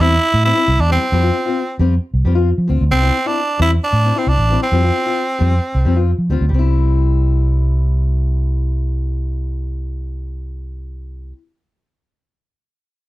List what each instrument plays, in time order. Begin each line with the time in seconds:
0.00 fingered electric bass E2, steel-string acoustic guitar G3 C4 E4, tenor saxophone E4
0.34 fingered electric bass A2
0.45 steel-string acoustic guitar G3 C4 E4, tenor saxophone E4
0.54 steel-string acoustic guitar C4 E4
0.68 fingered electric bass C2
0.79 fingered electric bass E2, tenor saxophone D4
0.89 steel-string acoustic guitar G3 C4 E4, tenor saxophone C4
1.12 fingered electric bass F2, steel-string acoustic guitar G3 C4 F4
1.23 steel-string acoustic guitar C4 F4
1.46 steel-string acoustic guitar C4 F4
1.79 fingered electric bass F2, steel-string acoustic guitar G3 C4 F4
2.14 fingered electric bass C2
2.25 fingered electric bass F2, steel-string acoustic guitar G3 C4 F4
2.35 steel-string acoustic guitar C4 F4
2.58 fingered electric bass F3
2.68 fingered electric bass D2, steel-string acoustic guitar C4 F4, muted steel-string acoustic guitar stroke
2.81 fingered electric bass D2
2.91 fingered electric bass C2, steel-string acoustic guitar G3 C4, tenor saxophone C4, muted steel-string acoustic guitar stroke
3.02 steel-string acoustic guitar C4 E4
3.26 steel-string acoustic guitar C4 E4, tenor saxophone D4
3.59 fingered electric bass E2, steel-string acoustic guitar G3 C4 E4, tenor saxophone E4
3.84 tenor saxophone D4
3.93 fingered electric bass A2
4.05 steel-string acoustic guitar C4 E4
4.16 steel-string acoustic guitar C4 E4, tenor saxophone C4
4.27 fingered electric bass C2, tenor saxophone D4
4.38 fingered electric bass A1
4.50 steel-string acoustic guitar G3 C4 E4
4.63 tenor saxophone C4
4.72 fingered electric bass F2, steel-string acoustic guitar G3 C4 F4
4.84 steel-string acoustic guitar C4 F4
5.06 steel-string acoustic guitar C4 F4
5.39 fingered electric bass F2, steel-string acoustic guitar G3 C4 F4
5.75 fingered electric bass C2
5.85 fingered electric bass F2, steel-string acoustic guitar G3 C4 F4
5.97 steel-string acoustic guitar C4 F4
6.18 fingered electric bass F3
6.30 fingered electric bass D2, steel-string acoustic guitar G3 C4 F4
6.41 fingered electric bass D2
6.49 fingered electric bass C2, steel-string acoustic guitar G3
6.54 steel-string acoustic guitar C4
6.59 steel-string acoustic guitar E4